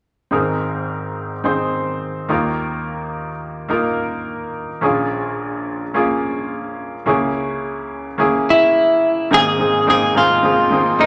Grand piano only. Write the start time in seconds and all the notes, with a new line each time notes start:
0.31 G#1 G#2 C4 D#4 G#4 A#4
1.44 C4 D#4 G#4 C5
2.29 D#2 D#3 A#3 D#4 F4 A#4
3.68 A#3 D#4 F4 A#4
4.81 A#1 A#2 A#3 C#4 F4 G#4
5.94 A#3 C#4 F4 G#4
7.06 C#2 C#3 A#3 C#4 E4 G#4
8.18 A#3 C#4 E4 G#4
9.31 G#1 G#2 A#3 C4 D#4 G#4
9.58 A#3 C4 D#4 G#4
9.87 A#3 C4 D#4 G#4
10.14 A#3 C4 D#4 G#4
10.42 A#3 C4 D#4 G#4
10.70 A#3 C4 D#4 G#4
10.98 A#3 C4 D#4 A#4